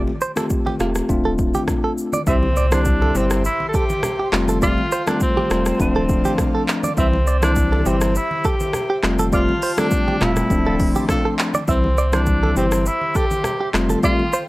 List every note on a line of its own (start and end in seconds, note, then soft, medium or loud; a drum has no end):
0.00 0.10 A3 medium
0.00 0.10 C4 medium
0.00 0.10 F4 medium
0.00 0.11 G4 loud
0.07 high conga medium
0.21 0.31 C5 medium
0.21 shaker medium
0.36 0.76 A3 medium
0.36 0.76 C4 medium
0.36 0.76 F4 medium
0.36 0.77 G4 medium
0.36 0.45 A4 medium
0.36 cross-stick loud
0.36 high conga medium
0.36 shaker medium
0.50 kick loud
0.50 shaker medium
0.66 0.75 G4 medium
0.66 high conga medium
0.80 1.02 E1 medium
0.80 1.07 A3 medium
0.80 1.07 C4 medium
0.80 1.07 F4 medium
0.80 0.89 F4 medium
0.80 1.07 G4 medium
0.80 cross-stick medium
0.80 low conga medium
0.80 shaker medium
0.95 cross-stick medium
0.95 shaker medium
1.09 1.53 D1 loud
1.09 2.18 A3 medium
1.09 2.18 C4 medium
1.09 2.18 D4 medium
1.09 2.18 F4 loud
1.09 kick medium
1.09 shaker medium
1.25 1.33 A4 medium
1.25 high conga soft
1.38 kick medium
1.38 shaker soft
1.54 1.63 G4 medium
1.54 high conga medium
1.54 shaker medium
1.68 kick medium
1.68 cross-stick medium
1.68 low conga medium
1.68 shaker medium
1.84 1.92 A4 medium
1.98 shaker medium
2.13 2.22 D5 medium
2.13 high conga medium
2.13 shaker medium
2.27 3.11 C2 loud
2.27 2.46 G3 medium
2.27 2.46 C4 medium
2.27 2.74 C4 medium
2.27 2.46 E4 medium
2.27 4.31 G4 medium
2.27 2.46 G4 loud
2.27 4.31 C5 medium
2.27 4.31 E5 medium
2.27 2.36 E5 medium
2.27 8.99 C6 loud
2.27 kick loud
2.27 impact medium
2.27 shaker medium
2.43 high conga medium
2.56 2.66 D5 medium
2.56 shaker medium
2.71 3.12 G3 medium
2.71 3.12 C4 medium
2.71 3.18 D4 loud
2.71 3.12 E4 medium
2.71 3.12 G4 medium
2.71 2.80 C5 medium
2.71 cross-stick loud
2.71 high conga medium
2.71 shaker medium
2.85 kick loud
2.85 shaker medium
3.02 3.16 A4 medium
3.02 high conga medium
3.15 3.48 G1 medium
3.15 3.42 G3 medium
3.15 3.42 C4 medium
3.15 3.45 C4 medium
3.15 3.42 E4 medium
3.15 3.42 G4 medium
3.15 3.25 G4 medium
3.15 low conga medium
3.15 shaker medium
3.30 cross-stick medium
3.30 shaker medium
3.45 3.66 E4 loud
3.45 shaker medium
3.60 high conga medium
3.68 3.76 A4 medium
3.74 4.33 G4 loud
3.74 3.84 A4 medium
3.74 kick loud
3.74 shaker medium
3.89 high conga medium
3.89 shaker medium
4.03 cross-stick medium
4.03 low conga medium
4.03 shaker medium
4.19 4.28 G4 medium
4.32 4.76 F1 loud
4.32 4.60 G3 medium
4.32 4.60 A3 medium
4.32 4.60 C4 medium
4.32 4.60 F4 loud
4.32 5.78 A4 medium
4.32 5.78 F5 medium
4.32 5.78 G5 medium
4.32 cross-stick loud
4.32 clap loud
4.32 shaker medium
4.48 4.57 A4 medium
4.48 high conga medium
4.48 shaker medium
4.62 4.81 G3 loud
4.62 4.81 A3 medium
4.62 4.81 C4 medium
4.62 4.81 F4 loud
4.62 5.10 F4 loud
4.62 4.72 D5 medium
4.62 kick loud
4.62 shaker medium
4.78 high conga medium
4.92 5.01 C5 medium
4.92 shaker medium
5.07 5.47 G3 medium
5.07 5.47 A3 medium
5.07 5.47 C4 medium
5.07 5.22 D4 loud
5.07 5.47 F4 medium
5.07 5.16 A4 medium
5.07 cross-stick loud
5.07 high conga medium
5.07 shaker medium
5.20 5.76 C4 loud
5.20 kick loud
5.20 shaker medium
5.37 5.51 G4 medium
5.37 high conga medium
5.50 5.72 E1 medium
5.50 5.77 G3 medium
5.50 5.77 A3 medium
5.50 5.78 C4 medium
5.50 5.78 F4 medium
5.50 5.60 F4 medium
5.50 cross-stick loud
5.50 shaker medium
5.66 cross-stick medium
5.66 shaker medium
5.79 6.23 D1 loud
5.79 6.88 F3 loud
5.79 6.88 A3 medium
5.79 6.88 C4 medium
5.79 6.65 C4 medium
5.79 6.89 D4 loud
5.79 6.96 A4 medium
5.79 6.96 D5 medium
5.79 6.96 F5 medium
5.79 kick loud
5.79 shaker medium
5.96 6.04 A4 medium
5.96 high conga medium
6.09 kick loud
6.09 shaker medium
6.25 6.33 G4 medium
6.25 high conga medium
6.25 shaker medium
6.38 kick loud
6.38 cross-stick medium
6.38 low conga medium
6.38 shaker medium
6.55 6.63 A4 medium
6.68 clap loud
6.68 shaker medium
6.83 6.92 D5 medium
6.83 high conga medium
6.83 shaker medium
6.97 7.82 C2 loud
6.97 7.16 E3 medium
6.97 7.16 G3 medium
6.97 7.16 C4 medium
6.97 7.40 C4 loud
6.97 7.16 E4 loud
6.97 9.01 G4 medium
6.97 10.47 C5 medium
6.97 9.01 E5 medium
6.97 7.07 E5 medium
6.97 kick loud
6.97 shaker medium
7.13 high conga medium
7.27 7.36 D5 medium
7.27 shaker medium
7.42 7.82 E3 medium
7.42 7.82 G3 medium
7.42 7.82 C4 medium
7.42 7.89 D4 loud
7.42 7.82 E4 medium
7.42 7.51 C5 medium
7.42 cross-stick loud
7.42 high conga medium
7.42 shaker medium
7.56 kick loud
7.56 shaker medium
7.72 7.80 A4 medium
7.72 high conga medium
7.85 8.19 G1 loud
7.85 8.13 E3 medium
7.85 8.13 G3 medium
7.85 8.13 C4 medium
7.85 8.18 C4 medium
7.85 8.13 E4 medium
7.85 7.95 G4 medium
7.85 low conga medium
7.85 shaker medium
8.01 cross-stick medium
8.01 shaker medium
8.15 8.47 E4 loud
8.15 shaker medium
8.31 high conga medium
8.44 9.04 G4 loud
8.44 8.54 A4 medium
8.44 kick loud
8.44 shaker soft
8.60 high conga medium
8.60 shaker medium
8.73 cross-stick medium
8.73 low conga medium
8.73 shaker medium
8.90 8.98 G4 medium
9.03 9.47 F1 loud
9.03 9.30 G3 loud
9.03 9.30 A3 medium
9.03 9.31 C4 medium
9.03 9.31 F4 loud
9.03 10.49 G4 medium
9.03 11.65 G5 medium
9.03 10.49 A5 medium
9.03 cross-stick loud
9.03 clap loud
9.03 shaker medium
9.19 9.28 A4 medium
9.19 high conga medium
9.19 shaker medium
9.32 9.51 G3 medium
9.32 9.51 A3 medium
9.32 9.52 C4 medium
9.32 9.52 F4 loud
9.32 9.80 F4 loud
9.32 9.42 D5 medium
9.32 kick loud
9.32 shaker medium
9.49 high conga medium
9.62 9.72 C5 medium
9.62 open hi-hat medium
9.62 shaker medium
9.77 10.17 G3 medium
9.77 10.17 A3 medium
9.77 10.18 C4 medium
9.77 10.24 D4 loud
9.77 10.18 F4 medium
9.77 9.86 A4 medium
9.77 cross-stick loud
9.77 high conga medium
9.77 shaker medium
9.91 kick loud
9.91 shaker medium
10.08 10.16 G4 medium
10.08 high conga medium
10.21 10.43 E1 medium
10.21 10.48 G3 medium
10.21 10.48 A3 medium
10.21 10.48 C4 medium
10.21 11.10 E4 loud
10.21 10.48 F4 medium
10.21 10.31 F4 medium
10.21 cross-stick medium
10.21 clap loud
10.21 mid tom loud
10.21 shaker medium
10.36 cross-stick medium
10.36 mid tom medium
10.36 shaker medium
10.50 10.94 D1 loud
10.50 11.59 F3 medium
10.50 11.59 A3 medium
10.50 11.59 C4 medium
10.50 11.59 D4 loud
10.50 11.67 A4 medium
10.50 11.67 D5 medium
10.50 11.67 C6 medium
10.50 kick medium
10.50 shaker medium
10.66 10.78 D4 medium
10.66 10.78 F4 medium
10.66 10.78 A4 medium
10.66 10.75 A4 medium
10.66 high conga medium
10.80 kick loud
10.80 open hi-hat medium
10.80 shaker medium
10.95 11.04 G4 medium
10.95 high conga medium
10.95 shaker medium
11.09 11.28 D4 loud
11.09 11.28 F4 loud
11.09 11.28 A4 loud
11.09 kick loud
11.09 cross-stick medium
11.09 low conga medium
11.09 shaker medium
11.25 11.33 A4 medium
11.39 clap loud
11.39 shaker medium
11.54 11.63 D5 medium
11.54 high conga medium
11.54 shaker medium
11.68 12.52 C2 loud
11.68 11.87 E3 medium
11.68 11.87 G3 medium
11.68 11.87 C4 medium
11.68 12.15 C4 medium
11.68 11.87 E4 loud
11.68 13.72 G4 medium
11.68 13.72 C5 medium
11.68 13.72 E5 medium
11.68 11.78 E5 medium
11.68 14.48 C6 loud
11.68 kick loud
11.68 shaker medium
11.84 high conga medium
11.98 12.07 D5 medium
11.98 shaker medium
12.12 12.53 E3 medium
12.12 12.53 G3 medium
12.12 12.53 C4 medium
12.12 12.57 D4 loud
12.12 12.53 E4 medium
12.12 12.22 C5 medium
12.12 cross-stick loud
12.12 high conga medium
12.12 shaker medium
12.26 kick loud
12.26 shaker medium
12.43 12.51 A4 medium
12.43 high conga medium
12.56 12.89 G1 loud
12.56 12.83 E3 medium
12.56 12.83 G3 medium
12.56 12.83 C4 medium
12.56 12.88 C4 medium
12.56 12.84 E4 medium
12.56 12.66 G4 medium
12.56 low conga medium
12.56 shaker medium
12.72 cross-stick medium
12.72 shaker medium
12.86 13.18 E4 loud
12.86 shaker medium
13.01 high conga medium
13.15 13.75 G4 loud
13.15 13.25 A4 medium
13.15 kick loud
13.15 shaker medium
13.31 high conga medium
13.31 shaker medium
13.44 cross-stick medium
13.44 low conga medium
13.44 shaker medium
13.61 13.69 G4 medium
13.74 13.96 F1 loud
13.74 14.01 G3 loud
13.74 14.01 A3 medium
13.74 14.01 C4 medium
13.74 14.01 F4 loud
13.74 14.48 A4 medium
13.74 14.48 F5 medium
13.74 14.48 G5 medium
13.74 cross-stick loud
13.74 clap loud
13.74 shaker medium
13.89 13.98 A4 medium
13.89 high conga medium
13.89 shaker medium
14.03 14.22 G3 loud
14.03 14.22 A3 medium
14.03 14.22 C4 medium
14.03 14.22 F4 loud
14.03 14.46 F4 loud
14.03 14.13 D5 medium
14.03 kick loud
14.03 shaker medium
14.19 high conga medium
14.33 14.42 C5 medium
14.33 shaker medium